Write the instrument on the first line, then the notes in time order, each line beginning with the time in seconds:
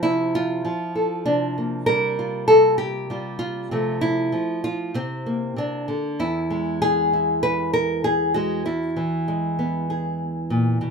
nylon-string guitar
Already playing: F3 C4
0.03 C3 E4
0.35 F4
0.65 F3
0.95 A4
1.26 C3 D4
1.58 A#3
1.86 G3 A#4
2.19 F4
2.48 C3 A4
2.78 G4
3.10 G3 F4
3.39 F4
3.71 C3 F3 A3
4.01 E4
4.32 F3
4.64 F4
4.94 C3 C4
5.26 A#3
5.56 C3 D4
5.88 D3
6.19 E2 E4
6.50 G#3
6.82 G#4
7.13 E4
7.43 B4
7.73 A#4
8.04 G#4
8.34 G#3 F#4
8.66 E2 E4
8.96 E3
9.28 G#3
9.59 B3
9.90 G#4
10.50 A#2
10.81 B2